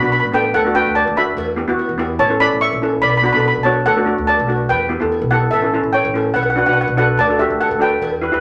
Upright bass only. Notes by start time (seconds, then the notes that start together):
0.03 B1
0.24 A1
0.54 D2
0.87 D2
1.07 D2
1.37 E2
1.69 E2
1.89 E2
2.19 A1
2.52 A1
2.73 A#1
3.02 B1
3.34 B1
3.56 B1
3.86 D2
4.18 D2
4.39 B1
4.70 E2
5.01 E2
5.22 B1
5.52 A1
5.83 A1
6.05 A1
6.35 B1
6.66 B1
6.88 B1
7.17 D2
7.50 D2
7.71 D2
8.02 E2
8.34 E2